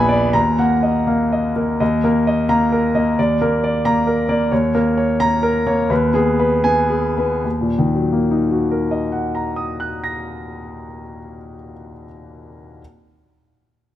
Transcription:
Already playing: A#1 B3 G#5 B5
0.09 D5
0.33 D#2 A#5
0.59 A#3 F#5
0.83 D#5
1.07 A#3 F5
1.32 D#5
1.56 A#3 A#4
1.80 D#2 D#5
2.04 A#3 A#4
2.27 D#5
2.49 A#3 A#5
2.72 A#4
2.95 A#3 D#5
3.19 D#2 D5
3.41 A#3 A#4
3.64 D5
3.85 A#3 A#5
4.07 A#4
4.29 A#3 D5
4.52 D#2 C#5
4.75 A#3 A#4
4.97 C#5
5.20 A#3 A#5
5.43 A#4
5.67 A#3 C#5
5.90 D#2 B4
6.14 B3 G#4
6.39 B4
6.64 B3 G#5
6.90 G#4
7.17 B3 B4
7.44 D#2
7.61 A#2
7.78 D#3
7.95 F#3
8.12 A#3
8.31 D#4
8.51 F#4
8.71 A#4
8.91 D#5
9.12 F#5
9.35 A#5
9.56 D#6
9.80 F#6
10.04 A#6

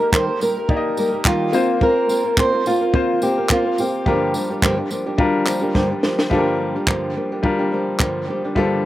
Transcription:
Already playing: A#3 D#4 G4 A4 A#4 D#5
0.00 A#3 G4 A#4
0.12 D#3 G3 A#3 G4 A#4 C5, kick, clap
0.27 A#3 G4 A#4
0.40 G3 A#3 G4 A#4, tambourine
0.57 A#3 G4 A#4
0.68 A#3 D#4 G4 D5, kick
0.77 D#5
0.97 G3 A#3 G4 A#4, tambourine
1.12 A#3 G4 A#4
1.24 D#3 G3 A#3 F4 G4 A#4, kick, clap
1.52 A#3 C4 F4 A#4 C5, tambourine
1.81 A#3 C4 F4 A#4, kick
2.08 A#3 C4 F4 A#4, tambourine
2.24 C4 F4 A#4
2.37 A#3 C4 F4 A#4 C5, kick, clap
2.53 C4 F4 A#4
2.65 A#3 C4 F4 A#4, tambourine
2.81 C4 F4 A#4
2.93 A#3 C4 F4 C5, kick
3.21 A#3 C4 F4 G4 A#4, tambourine
3.38 C4 F4 A#4
3.49 A#3 C4 F4 A#4, kick, clap
3.65 C4 F4 A#4
3.78 A#3 C4 F4 G4 A#4, tambourine
4.06 G2 D3 F3 G3 A#3 D4 F4 G4 A#4, kick
4.34 F3 A#3 D4 G4, tambourine
4.50 F3 A#3 D4 G4
4.62 G2 D3 F3 A#3 D4 G4, kick, clap
4.78 F3 A#3 D4 G4
4.90 F3 A#3 D4 G4, tambourine
5.06 F3 A#3 D4 G4
5.18 G3 D4 F4 A#4, kick
5.46 F3 A#3 D4 G4, clap, tambourine
5.61 F3 A#3 D4 G4
5.74 G2 D3 F3 A#3 D4 G4, kick, snare
5.90 F3 A#3 D4 G4
6.03 F3 A#3 D4 G4, snare
6.19 snare
6.30 G2 D3 F3 G3 A#3 D4 F4 G4 A4, kick
6.38 A#4
6.76 F3 A#3 D4 G4
6.87 G2 D3 F3 A#3 D4 G4, kick, clap
7.16 F3 A#3 D4 G4
7.32 F3 A#3 D4 G4
7.43 G3 D4 F4 A#4, kick
7.59 F3 A#3 D4 G4
7.72 F3 A#3 D4 G4
7.99 G2 D3 F3 A#3 D4 G4, kick, clap
8.28 F3 A#3 D4 G4
8.44 F3 A#3 D4 G4
8.55 G2 D3 F3 G3 A#3 D4 F4 G4 A4, kick

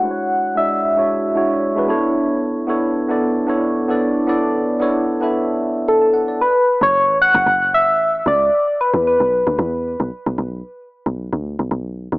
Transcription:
Already playing: F#5
0.02 G#3 D4 E4 F#4 C5
0.11 C#5
0.55 G#3 D4 E4 F#4 D5 E5
0.96 G#3 D4 E4 F#4 C#5
1.34 G#3 D4 E4 F#4 C#5
1.76 G#3 D4 E4 F#4 B4
1.88 B3 D4 E4 A4 C#5
2.67 B3 D4 E4 A4 C#5
3.08 B3 D4 E4 A4 D5
3.47 B3 D4 E4 A4 C#5
3.88 B3 D4 E4 A4 D5
4.27 B3 D4 E4 A4 D5
4.79 B3 D4 E4 A4 C#5
5.21 B3 D4 E4 A4 E5
5.88 A4
6.02 A5
6.14 F#5
6.28 D5
6.41 B4
6.81 F#1 C#5
7.08 A1
7.22 F#5
7.35 F#1
7.46 F#1
7.74 E5
7.88 A1
8.26 C#2 D5
8.81 B4
8.94 E2
9.07 B4
9.20 B1
9.47 D2
9.59 E2
10.00 B1
10.26 B1
10.38 B1
11.06 B1
11.33 D2
11.59 B1
11.71 B1
12.12 D2

